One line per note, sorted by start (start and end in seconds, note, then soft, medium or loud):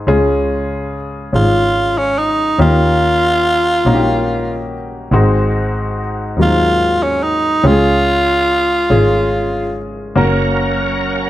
0.07 1.30 C#2 medium
0.07 1.30 C#3 medium
0.07 0.94 G#3 medium
0.07 0.95 C#4 medium
0.07 0.95 F4 medium
0.07 0.95 G#4 medium
1.32 2.56 G#1 medium
1.32 2.20 G#3 medium
1.32 2.20 C#4 soft
1.32 1.40 D#4 soft
1.32 2.00 F4 medium
1.32 2.21 G#4 medium
1.39 2.24 F4 soft
1.98 2.20 C#4 medium
2.18 2.60 D#4 medium
2.59 3.81 D#2 medium
2.59 3.82 D#3 soft
2.59 3.47 A#3 medium
2.59 3.46 C#4 medium
2.59 3.47 D#4 medium
2.59 4.67 F4 medium
2.59 3.47 G4 medium
3.86 5.08 A#1 medium
3.86 4.73 A#3 medium
3.86 4.73 C#4 medium
3.86 4.73 D#4 medium
3.86 3.93 F#4 medium
3.94 4.77 G4 medium
5.12 6.34 G#1 loud
5.12 6.35 G#2 medium
5.12 5.99 G#3 medium
5.12 6.00 C4 medium
5.12 6.00 D#4 medium
5.12 6.00 F#4 medium
6.37 7.60 D#2 medium
6.37 7.26 F#3 medium
6.37 7.25 G#3 medium
6.37 6.45 A#3 soft
6.37 7.26 D#4 medium
6.42 7.29 C4 soft
6.42 7.05 F4 medium
7.03 7.25 C#4 medium
7.23 7.69 D#4 medium
7.63 8.87 C#2 loud
7.63 8.86 C#3 medium
7.63 8.51 G#3 medium
7.63 8.52 C#4 medium
7.63 8.52 F4 medium
7.63 7.71 G4 medium
7.67 9.76 F4 medium
7.67 8.55 G#4 medium
8.90 10.13 G#1 medium
8.90 9.77 G#3 medium
8.90 9.78 C#4 medium
8.90 9.78 F4 soft
8.90 9.78 G#4 medium
10.15 11.30 F#1 medium
10.15 11.30 F#3 soft
10.15 11.04 A#3 medium
10.15 11.30 A#3 soft
10.15 11.04 C#4 medium
10.15 11.30 C#4 soft
10.15 11.04 F#4 medium
10.15 11.04 A#4 medium
10.15 11.30 A#4 medium